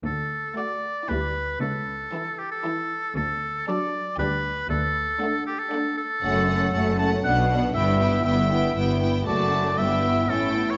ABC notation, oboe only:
X:1
M:3/4
L:1/16
Q:1/4=117
K:D
V:1 name="Oboe"
A4 d4 B4 | A6 G A4- A | A4 d4 B4 | A6 G A3 A2- |
A6 a2 f3 z | e4 e4 z4 | d4 e4 A3 c |]